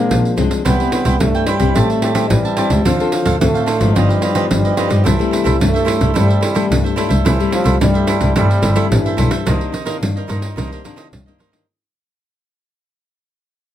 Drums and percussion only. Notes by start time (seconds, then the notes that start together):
0.11 pandeiro
0.25 pandeiro
0.38 pandeiro
0.51 pandeiro
0.65 pandeiro
0.80 pandeiro
0.92 pandeiro
1.05 pandeiro
1.20 pandeiro
1.35 pandeiro
1.47 pandeiro
1.60 pandeiro
1.76 pandeiro
1.90 pandeiro
2.02 pandeiro
2.15 pandeiro
2.30 pandeiro
2.45 pandeiro
2.57 pandeiro
2.70 pandeiro
2.85 pandeiro
3.00 pandeiro
3.12 pandeiro
3.25 pandeiro
3.41 pandeiro
3.55 pandeiro
3.68 pandeiro
3.81 pandeiro
3.96 pandeiro
4.10 pandeiro
4.22 pandeiro
4.35 pandeiro
4.51 pandeiro
4.65 pandeiro
4.77 pandeiro
4.90 pandeiro
5.06 pandeiro
5.21 pandeiro
5.33 pandeiro
5.46 pandeiro
5.61 pandeiro
5.76 pandeiro
5.88 pandeiro
6.01 pandeiro
6.16 pandeiro
6.30 pandeiro
6.43 pandeiro
6.56 pandeiro
6.72 pandeiro
6.86 pandeiro
6.98 pandeiro
7.10 pandeiro
7.26 pandeiro
7.40 pandeiro
7.52 pandeiro
7.66 pandeiro
7.81 pandeiro
7.95 pandeiro
8.07 pandeiro
8.21 pandeiro
8.36 pandeiro
8.51 pandeiro
8.63 pandeiro
8.76 pandeiro
8.92 pandeiro
9.06 pandeiro
9.18 pandeiro
9.31 pandeiro
9.46 pandeiro
9.61 pandeiro
9.74 pandeiro
9.87 pandeiro
10.03 pandeiro
10.17 pandeiro
10.29 pandeiro
10.42 pandeiro
10.58 pandeiro
10.73 pandeiro
10.85 pandeiro
10.98 pandeiro
11.13 pandeiro
11.28 pandeiro
11.40 pandeiro
11.53 pandeiro